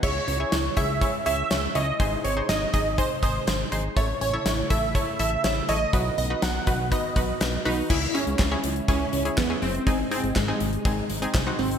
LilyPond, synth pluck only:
\new Staff \with { instrumentName = "Synth pluck" } { \time 4/4 \key cis \minor \tempo 4 = 122 <e' gis' cis''>8 r16 <e' gis' cis''>8 r16 <e' gis' cis''>16 r16 <e' gis' cis''>16 r16 <e' gis' cis''>8 r8 <e' gis' cis''>16 r16 | <dis' gis' bis'>8 r16 <dis' gis' bis'>8 r16 <dis' gis' dis''>16 r16 <dis' gis' bis'>16 r16 <dis' gis' bis'>8 r8 <dis' gis' bis'>16 r16 | <e' a' cis''>8 r16 <e' a' cis''>8 r16 <e' a' e''>16 r16 <e' a' cis''>16 r16 <e' a' e''>8 r8 <e' a' cis''>16 r16 | <dis' fis' b'>8 r16 <dis' fis' b'>8 r16 <dis' fis' b'>16 r16 <dis' fis' b'>16 r16 <dis' fis' b'>8 r8 <dis' fis' b'>16 r16 |
<cis' e' gis'>16 r16 <cis' e' gis'>8 r16 <cis' e' gis'>8 r16 <cis' e' gis'>8 r16 <cis' e' gis'>16 r16 <cis' e' gis'>8 r16 | <bis dis' gis'>16 r16 <bis dis' gis'>8 r16 <bis dis' gis'>8 r16 <bis dis' gis'>8 r16 <bis dis' gis'>16 r16 <bis dis' fis'>8 r16 | }